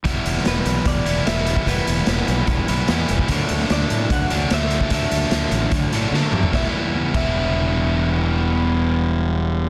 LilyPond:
<<
  \new Staff \with { instrumentName = "Clean electric guitar" } { \time 4/4 \key e \minor \tempo 4 = 148 r4 b'4 d''4 e''4 | b'2.~ b'8 r8 | r4 d''4 fis''4 e''4 | e''2.~ e''8 r8 |
e''8 r4 e''2~ e''8~ | e''1 | }
  \new Staff \with { instrumentName = "Overdriven electric guitar" } { \clef bass \time 4/4 \key e \minor <e g b e'>2~ <e g b e'>8 <e g b e'>8 <e g b e'>4 | <e g b e'>2~ <e g b e'>8 <e g b e'>8 <e g b e'>4 | <d fis a d'>2~ <d fis a d'>8 <d fis a d'>8 <d fis a d'>4 | <d fis a d'>2~ <d fis a d'>8 <d fis a d'>8 <d fis a d'>4 |
<e g b e'>8 r4 <e g b e'>2~ <e g b e'>8~ | <e g b e'>1 | }
  \new Staff \with { instrumentName = "Fingered electric bass" } { \clef bass \time 4/4 \key e \minor e,,8 e,,8 e,,8 b,,8 e,,8 e,,8 e,,4 | e,,8 e,,8 e,,8 b,,8 e,,8 b,,8 e,8 e,,8 | d,8 d,8 d,8 a,8 d,8 d,8 d,4 | d,8 d,8 d,8 a,,8 d,8 a,8 d8 fis,8 |
e,,8 r4 e,,2~ e,,8~ | e,,1 | }
  \new DrumStaff \with { instrumentName = "Drums" } \drummode { \time 4/4 <hh bd>8 hh16 sn16 <hh sn>8 hh8 <hh bd>8 hh8 <hh sn>8 hh16 bd16 | <hh bd>8 hh8 <hh sn>8 hh8 <hh bd>8 hh8 <hh sn>8 hh16 bd16 | <hh bd>8 hh16 sn16 <hh sn>8 hh8 <hh bd>8 hh8 <hh sn>8 hh16 bd16 | <hh bd>8 hh16 sn16 <hh sn>8 hh8 <hh bd>8 hh8 sn8 toml16 tomfh16 |
<bd sn>4 r8 <cymc bd>8 r4 r4 | r4 r4 r4 r4 | }
>>